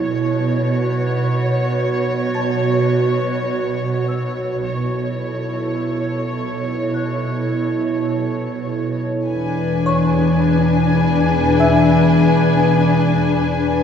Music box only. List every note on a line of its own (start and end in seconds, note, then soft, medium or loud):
2.34 5.77 A5 soft
2.34 5.76 A6 soft
4.08 7.50 E6 soft
6.94 9.22 F#6 soft
9.86 13.27 C#5 soft
9.86 13.27 C#6 soft
11.60 13.83 E5 soft
11.60 13.83 E6 soft